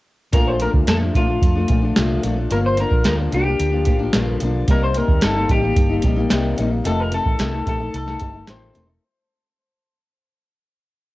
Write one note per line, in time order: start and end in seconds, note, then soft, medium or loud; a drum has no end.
0.32 0.66 A#1 medium
0.32 0.57 A#2 medium
0.32 0.59 F3 medium
0.32 0.61 A3 medium
0.32 0.61 D4 medium
0.32 0.48 A#4 medium
0.32 kick loud
0.32 closed hi-hat medium
0.48 0.61 C5 medium
0.59 0.86 A#2 medium
0.59 0.87 F3 medium
0.59 0.88 A3 medium
0.59 0.69 A#4 medium
0.59 closed hi-hat medium
0.63 0.88 D4 medium
0.74 0.85 D2 medium
0.74 kick medium
0.87 1.09 F2 medium
0.87 1.01 A#2 medium
0.87 1.01 F3 medium
0.87 1.01 A3 medium
0.87 0.99 D4 medium
0.87 0.96 A4 medium
0.87 snare loud
0.87 closed hi-hat medium
1.00 1.14 F3 soft
1.00 1.15 A3 soft
1.00 1.15 D4 medium
1.14 1.37 A#1 medium
1.14 1.28 A#2 medium
1.14 1.29 F3 medium
1.14 1.29 A3 medium
1.14 1.26 D4 medium
1.14 2.20 F4 medium
1.14 kick medium
1.14 closed hi-hat soft
1.27 1.56 A3 soft
1.27 1.54 D4 soft
1.31 1.57 F3 soft
1.42 1.64 F2 medium
1.42 kick medium
1.42 closed hi-hat medium
1.55 1.69 A3 soft
1.55 1.69 D4 medium
1.59 1.68 F3 soft
1.68 1.91 A#1 medium
1.68 1.82 A#2 medium
1.68 1.83 F3 medium
1.68 1.83 A3 medium
1.68 kick medium
1.68 closed hi-hat medium
1.72 1.81 D4 medium
1.82 1.96 F3 soft
1.82 1.96 A3 soft
1.82 1.96 D4 medium
1.96 2.19 C2 medium
1.96 2.21 A#2 medium
1.96 2.23 F3 medium
1.96 2.24 A3 medium
1.96 2.25 D4 medium
1.96 snare loud
1.96 closed hi-hat medium
2.23 2.46 A#1 medium
2.23 2.37 A#2 medium
2.23 2.37 F3 medium
2.23 2.37 A3 medium
2.23 2.35 D4 medium
2.23 closed hi-hat medium
2.36 2.52 A3 soft
2.36 2.50 D4 soft
2.41 2.50 F3 soft
2.50 2.84 G1 medium
2.50 2.78 G2 medium
2.50 2.76 D3 medium
2.50 2.77 F3 medium
2.50 2.79 A#3 medium
2.50 2.79 D4 medium
2.50 2.57 A#4 medium
2.50 closed hi-hat medium
2.66 2.78 C5 loud
2.77 3.03 D3 medium
2.77 3.04 F3 medium
2.77 3.05 A#3 medium
2.77 3.05 A#4 medium
2.77 closed hi-hat medium
2.81 3.05 D4 medium
2.91 3.02 A#1 medium
2.91 kick medium
3.03 3.27 D2 medium
3.03 3.18 G2 medium
3.03 3.18 D3 medium
3.03 3.19 F3 medium
3.03 3.19 A#3 medium
3.03 3.17 D4 medium
3.03 3.13 A#4 medium
3.03 snare loud
3.03 closed hi-hat medium
3.18 3.32 F3 soft
3.18 3.33 A#3 soft
3.18 3.32 D4 medium
3.32 3.54 C2 medium
3.32 3.45 D3 medium
3.32 3.46 F3 medium
3.32 3.46 A#3 medium
3.32 4.38 G4 medium
3.32 closed hi-hat medium
3.36 3.44 D4 medium
3.45 3.74 F3 soft
3.45 3.72 A#3 soft
3.45 3.70 D4 medium
3.59 3.87 D2 medium
3.59 closed hi-hat medium
3.72 3.86 A#3 soft
3.72 3.86 D4 medium
3.76 3.85 F3 soft
3.85 4.09 A1 medium
3.85 3.99 D3 medium
3.85 4.00 F3 medium
3.85 4.00 A#3 medium
3.85 3.98 D4 medium
3.85 kick medium
3.85 closed hi-hat medium
3.99 4.13 F3 soft
3.99 4.14 A#3 medium
3.99 4.13 D4 medium
4.13 4.36 A#1 medium
4.13 4.40 G2 medium
4.13 4.39 D3 medium
4.13 4.41 F3 medium
4.13 4.41 A#3 medium
4.13 4.42 D4 medium
4.13 snare loud
4.13 closed hi-hat medium
4.40 4.63 B1 medium
4.40 4.68 D3 medium
4.40 4.68 F3 medium
4.40 4.69 A#3 medium
4.40 closed hi-hat medium
4.44 4.70 D4 medium
4.68 5.01 C2 loud
4.68 4.93 C3 medium
4.68 4.95 G3 medium
4.68 4.96 A#3 medium
4.68 4.97 D#4 medium
4.68 4.83 A#4 medium
4.68 kick loud
4.68 closed hi-hat medium
4.84 4.97 C5 medium
4.94 5.21 C3 medium
4.94 5.22 G3 medium
4.94 5.23 A#3 medium
4.94 5.24 D#4 medium
4.94 5.23 A#4 medium
4.94 closed hi-hat medium
5.08 5.19 D#2 medium
5.08 kick medium
5.21 5.44 G1 medium
5.21 5.36 C3 medium
5.21 5.36 G3 medium
5.21 5.36 A#3 medium
5.21 5.34 D#4 medium
5.21 5.48 A4 medium
5.21 snare loud
5.21 closed hi-hat medium
5.35 5.49 G3 soft
5.35 5.50 A#3 soft
5.35 5.49 D#4 medium
5.49 5.71 A1 medium
5.49 5.62 C3 medium
5.49 5.63 G3 medium
5.49 5.63 A#3 medium
5.49 5.61 D#4 medium
5.49 6.55 G4 medium
5.49 kick medium
5.49 closed hi-hat medium
5.62 5.91 A#3 soft
5.62 5.88 D#4 soft
5.66 5.91 G3 soft
5.76 5.98 G1 medium
5.76 kick loud
5.76 closed hi-hat medium
5.89 6.04 A#3 medium
5.89 6.03 D#4 medium
5.93 6.03 G3 soft
6.02 6.25 A#1 medium
6.02 6.17 C3 medium
6.02 6.17 G3 medium
6.02 6.17 A#3 medium
6.02 kick medium
6.02 closed hi-hat medium
6.07 6.15 D#4 medium
6.16 6.30 G3 soft
6.16 6.30 A#3 medium
6.16 6.30 D#4 medium
6.29 6.53 C2 medium
6.29 6.55 C3 medium
6.29 6.56 G3 medium
6.29 6.58 A#3 medium
6.29 6.58 D#4 medium
6.29 snare loud
6.29 closed hi-hat medium
6.56 6.80 A#1 medium
6.56 6.71 C3 medium
6.56 6.71 G3 medium
6.56 6.71 A#3 medium
6.56 6.69 D#4 medium
6.56 closed hi-hat medium
6.70 6.85 G3 soft
6.70 6.85 A#3 soft
6.70 6.84 D#4 soft
6.84 7.18 F1 medium
6.84 7.12 F2 medium
6.84 7.10 C3 medium
6.84 7.11 D#3 medium
6.84 7.13 A3 medium
6.84 7.13 D#4 medium
6.84 7.00 A4 medium
6.84 closed hi-hat medium
7.00 7.13 A#4 medium
7.11 7.38 C3 soft
7.11 7.38 D#3 medium
7.11 7.39 A3 medium
7.11 7.39 D#4 medium
7.11 7.68 A4 medium
7.11 closed hi-hat medium
7.26 7.37 A1 medium
7.26 kick medium
7.38 7.61 C2 medium
7.38 7.52 F2 medium
7.38 7.53 C3 medium
7.38 7.53 D#3 medium
7.38 7.53 A3 medium
7.38 7.51 D#4 medium
7.38 snare medium
7.38 closed hi-hat medium
7.52 7.67 A3 soft
7.52 7.66 D#4 soft
7.56 7.66 D#3 soft
7.66 7.88 A#1 medium
7.66 7.80 C3 medium
7.66 7.80 D#3 medium
7.66 7.80 A3 medium
7.66 7.78 D#4 medium
7.66 7.95 A4 medium
7.66 kick medium
7.66 closed hi-hat medium
7.79 8.07 A3 soft
7.79 8.05 D#4 soft
7.83 8.09 D#3 soft
7.94 8.16 C2 medium
7.94 8.45 A4 medium
7.94 closed hi-hat medium
8.06 8.21 A3 medium
8.06 8.20 D#4 medium
8.06 snare soft
8.10 8.20 D#3 soft
8.19 8.43 G1 medium
8.19 8.34 C3 medium
8.19 8.35 D#3 medium
8.19 8.34 A3 medium
8.19 kick medium
8.19 closed hi-hat medium
8.24 8.32 D#4 medium
8.33 8.48 A3 soft
8.33 8.47 D#4 soft
8.37 8.47 D#3 soft
8.46 8.70 A1 medium
8.46 8.74 F2 medium
8.46 8.72 C3 medium
8.46 8.73 D#3 medium
8.46 8.74 A3 medium
8.46 8.76 D#4 medium
8.46 8.87 C5 medium
8.46 snare loud
8.46 closed hi-hat medium
8.73 8.97 E1 medium
8.73 8.88 C3 medium
8.73 8.88 D#3 medium
8.73 8.87 A3 medium
8.73 8.85 D#4 medium
8.73 closed hi-hat medium
8.86 9.03 D#3 soft
8.86 9.02 A3 soft
8.86 9.01 D#4 soft